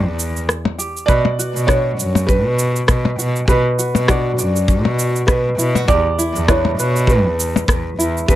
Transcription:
Already playing: ukulele E4 G4 B4 D5
0.05 cello E2
0.19 cabasa
0.36 cabasa
0.49 cross-stick, cabasa
0.65 percussion blips
0.78 ukulele G4, cabasa
0.97 cabasa
1.06 cello B2, ukulele B4, felt piano D5, kick, cabasa
1.25 percussion blips
1.39 ukulele F#4, cabasa
1.55 cello B2, cabasa
1.67 ukulele D4 F#4, felt piano C#5, kick, cross-stick, cabasa
1.98 cello F#2, cabasa
2.15 percussion blips, cabasa
2.27 felt piano B4, kick, cabasa
2.46 cello B2
2.59 cabasa
2.76 cabasa
2.88 cello B2, kick, cross-stick, cabasa
3.05 percussion blips
3.18 cello B2, ukulele F#4, cabasa
3.36 cabasa
3.48 cello B2, felt piano B4, ukulele B4, kick, cabasa
3.79 ukulele F#4, cabasa
3.95 cello B2, percussion blips, cabasa
4.07 ukulele D4 F#4 D5, felt piano F#4, kick, cross-stick, cabasa
4.38 cello F#2, ukulele D5, cabasa
4.56 cabasa
4.68 kick, cabasa
4.85 cello B2, percussion blips
4.99 cabasa
5.16 cabasa
5.27 cello B2, felt piano B4, kick, cross-stick, cabasa
5.58 cello B2, ukulele E4, cabasa
5.75 ukulele F#4, percussion blips, cabasa
5.88 cello E2, ukulele G4, felt piano D5, kick, cabasa
6.18 ukulele E4, cabasa
6.34 cello E2, cabasa
6.48 ukulele D4 E4 B4, felt piano C#5, kick, cross-stick, cabasa
6.65 percussion blips
6.78 cello B2, ukulele B4, cabasa
6.96 cabasa
7.07 felt piano B4, kick, cabasa
7.25 cello E2
7.40 cabasa
7.56 percussion blips, cabasa
7.68 cello E2, kick, cross-stick, cabasa
7.98 cello E2, ukulele E4, cabasa
8.17 cabasa
8.28 cello E2, felt piano B4, kick, cabasa

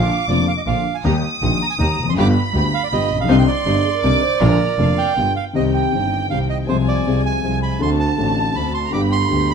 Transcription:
Already playing: bandoneon F5, violin section D6
0.28 double bass F1, grand piano F1 F2 D3 F3 A#3 F4, string section A#3 D4 F4, bandoneon D5
0.48 bandoneon F5
0.57 bandoneon D#5
0.66 double bass A#1, grand piano A#1 A#2 D3 F3 A#3 F4, string section A#3 D4 F4, bandoneon F5
0.95 bandoneon G#5
1.04 double bass D#2, grand piano D#2 D#3 G3 A#3 G4, string section A#3 D#4 G4, bandoneon A#5, violin section D#6
1.42 double bass A#1, grand piano A#1 A#2 D#3 G3 A#3 G4, string section A#3 D#4 G4
1.62 bandoneon A#5
1.70 bandoneon G#5
1.79 grand piano D#2 D#3 G3 A#3 G4, double bass D#2, string section A#3 D#4 G4, bandoneon A#5
1.98 double bass F1
2.03 grand piano E2
2.09 grand piano F2, bandoneon C6
2.14 double bass G1, grand piano F#2, string section B3 F4 G4, violin section B5
2.18 grand piano G1 G2 D3 G3 B3 F4, bandoneon D6
2.54 double bass D2, grand piano D2 D3 G3 B3 F4, string section B3 F4 G4
2.74 bandoneon F5
2.84 bandoneon D5
2.92 double bass G1, grand piano G1 G2 D3 G3 B3 F4, string section B3 F4 G4, bandoneon D#5
3.11 double bass A#1
3.15 grand piano A1
3.20 grand piano A#1, bandoneon F5
3.24 grand piano B1, double bass C2
3.29 grand piano C2 C3 D3 G3 C4 D#4, string section C4 D4 D#4, violin section C6
3.39 bandoneon G5
3.48 bandoneon D5
3.66 grand piano G1 G2 D3 G3 C4 D#4, double bass G1, string section C4 D4 D#4
3.85 flute G#4
3.94 flute A#4
4.03 double bass C2, grand piano C2 C3 D3 G3 C4 D#4, string section C4 D4 D#4, violin section D6
4.22 flute C5
4.40 grand piano A#1 A#2 D3 F3 A#3 F4, double bass A#1, string section A#3 D4 F4, flute D5, violin section A#5
4.50 flute A#4
4.78 grand piano F1 F2 D3 F3 A#3 F4, double bass F1, string section A#3 D4 F4, violin section F5
4.98 bandoneon G5
5.16 grand piano G1 G2 D3 G3 B3 F4, double bass G1, string section G3 B3 F4, violin section G5
5.36 bandoneon F5
5.53 grand piano C2 C3 D#3 G3 C4 G4, double bass C2, string section G3 C4 D#4, bandoneon D#5, violin section G5
5.74 bandoneon G5
5.92 double bass G1, grand piano G1 G2 D#3 G3 C4, string section G3 C4 D#4
6.30 double bass C2, grand piano C2 C3 D#3 G3 C4, string section G3 C4 D#4, bandoneon F5
6.34 grand piano G4
6.50 bandoneon D#5
6.61 violin section G5
6.67 double bass C2, grand piano C2 C3 F3 G#3 C4, string section G#3 C4 F4, bandoneon C5, violin section G#5
6.71 grand piano G#4
6.88 bandoneon D5
7.04 double bass C2, grand piano C2 C3 F3 G#3 C4, string section G#3 C4 F4
7.09 grand piano G#4
7.26 bandoneon G#5
7.41 double bass C2, grand piano C2 C3 F3 G#3 C4, string section G#3 C4 F4
7.46 grand piano G#4
7.63 bandoneon B5
7.80 double bass D2, grand piano D2 D3 A3 C4 F#4, string section C4 D4 F#4, violin section A5, bandoneon C6
7.99 bandoneon A5
8.16 grand piano A1 A2 D3 A3 C4 F#4, double bass A1, string section C4 D4 F#4
8.54 grand piano D2 D3 A3 C4 F#4, double bass D2, string section C4 D4 F#4, bandoneon B5
8.74 bandoneon C6
8.86 violin section A#5
8.91 grand piano G1 G2 D3 G3 B3 G4, double bass G1, string section B3 D4 G4, violin section B5, bandoneon D6
9.12 bandoneon C6
9.29 double bass D2, grand piano D2 D3 G3 B3 G4, string section B3 D4 G4
9.51 bandoneon B5

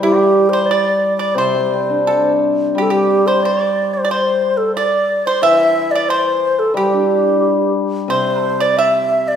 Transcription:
Already playing: hammered dulcimer E3
0.00 hammered dulcimer G3, xiao G4, pipa G4
0.49 xiao C5, pipa C5
0.66 xiao D5
0.71 pipa D5
1.17 xiao D5, pipa D5
1.35 hammered dulcimer C3, xiao C5, pipa C5
1.55 hammered dulcimer G3
1.74 hammered dulcimer C4
1.90 hammered dulcimer D4
2.07 hammered dulcimer G4, pipa A4
2.75 hammered dulcimer G3, xiao G4, pipa G4
2.82 xiao A4
2.90 pipa G4, xiao G4
3.27 xiao C5, pipa C5
3.43 xiao D5, pipa D5
3.94 xiao C5
4.05 pipa D5
4.09 xiao C5, pipa C5
4.57 xiao A4
4.75 xiao D5, pipa D5
5.26 xiao C5, pipa C5
5.42 hammered dulcimer E3, xiao E5, pipa E5
5.91 xiao D5
5.95 pipa D5
6.09 xiao C5, pipa C5
6.59 xiao A4
6.74 hammered dulcimer G3, xiao G4, pipa G4
6.94 hammered dulcimer D4
8.08 hammered dulcimer C3, pipa C5, xiao C5
8.42 pipa A4
8.60 pipa D5, xiao D5
8.77 xiao E5, pipa E5
9.28 xiao D5

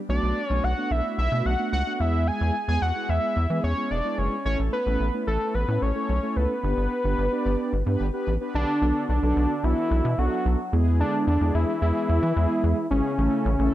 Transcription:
0.09 analog synth bass B1, analog polysynth A3 B3 D4 F#4, analog synth lead D5
0.23 analog synth bass B1
0.46 analog synth bass B1, analog polysynth A3 B3 D4 F#4, analog synth lead C#5
0.64 analog synth bass B1, analog synth lead F#5
0.77 analog polysynth A3 B3 D4 F#4
0.91 analog synth bass B1, analog synth lead E5
1.18 analog synth bass B1, analog synth lead E5
1.32 analog synth bass B2, analog polysynth A3 B3 D4 F#4
1.46 analog synth bass B1, analog synth lead F#5
1.59 analog polysynth A3 B3 D4 F#4
1.73 analog synth bass C#2, analog synth lead F#5
1.86 analog polysynth A3 B3 D4 F#4
1.93 analog synth lead F#5
2.00 analog synth bass E2, analog polysynth G#3 B3 E4 G#4, analog synth lead E5
2.27 analog synth lead G#5
2.41 analog synth bass E2
2.68 analog synth bass E2, analog polysynth G#3 B3 E4 G#4, analog synth lead G#5
2.82 analog synth bass E2, analog synth lead F#5
2.95 analog polysynth G#3 B3 E4 G#4
3.09 analog synth bass E2, analog synth lead E5
3.36 analog synth bass E2
3.50 analog synth bass E3, analog polysynth G#3 B3 E4 G#4
3.64 analog synth bass E2, analog synth lead C#5
3.77 analog polysynth G#3 B3 E4 G#4
3.91 analog synth bass E1, analog synth lead D5
4.04 analog polysynth G#3 B3 E4 G#4
4.18 analog synth bass F#1, analog synth lead C#5
4.45 analog synth bass A1, analog polysynth A3 C#4 E4 A4, analog synth lead C#5
4.59 analog synth bass A1
4.73 analog synth lead B4
4.86 analog synth bass A1, analog polysynth A3 C#4 E4 A4
5.00 analog synth bass A1
5.13 analog polysynth A3 C#4 E4 B4
5.27 analog synth bass A1, analog synth lead A4
5.55 analog synth bass A1, analog synth lead B4
5.68 analog synth bass A2, analog polysynth A3 C#4 E4 A4
5.82 analog synth bass A1, analog synth lead C#5
5.95 analog polysynth A3 C#4 E4 A4
6.09 analog synth bass B1
6.23 analog polysynth A3 C#4 E4 A4
6.36 analog synth bass C#2, analog synth lead B4
6.63 analog synth bass G1, analog polysynth B3 D4 G4 B4
6.77 analog synth bass G1
7.04 analog synth bass G1, analog polysynth B3 D4 G4 B4
7.18 analog synth bass G1
7.32 analog polysynth B3 D4 G4 D5
7.46 analog synth bass G1
7.73 analog synth bass G1
7.86 analog synth bass G2, analog polysynth B3 D4 G4 B4
8.00 analog synth bass G1
8.13 analog polysynth B3 D4 G4 B4
8.27 analog synth bass A1
8.41 analog polysynth B3 D4 G4 B4
8.55 analog synth bass B1, analog synth lead D4
8.82 analog synth bass B1, analog polysynth B3 D4 F#4 A4
9.09 analog synth bass B1, analog synth lead D4
9.23 analog synth bass B1, analog polysynth B3 D4 F#4 A4
9.36 analog synth bass B1
9.64 analog synth bass B1, analog polysynth B3 D4 F#4 A4, analog synth lead E4
9.91 analog synth bass B1
10.05 analog synth bass B2
10.18 analog synth bass B1, analog polysynth B3 D4 F#4 A4, analog synth lead F#4
10.46 analog synth bass B1
10.73 analog synth bass E2, analog polysynth G#3 B3 E4 G#4
11.00 analog synth lead D4
11.27 analog synth bass E2, analog synth lead D4
11.41 analog synth bass E2, analog polysynth G#3 B3 E4 G#4
11.55 analog synth bass E2, analog synth lead E4
11.82 analog synth bass E2, analog polysynth G#3 B3 E4 G#4, analog synth lead E4
12.09 analog synth bass E2
12.23 analog synth bass E3
12.36 analog synth bass E2, analog polysynth G#3 B3 E4 G#4
12.64 analog synth bass E2
12.91 analog synth bass G#1, analog polysynth G#3 B3 E4 G#4, analog synth lead C#4
13.18 analog synth bass A1, analog polysynth A3 C#4 E4 A4
13.45 analog synth bass A1
13.59 analog synth bass A1, analog polysynth A3 C#4 E4 A4

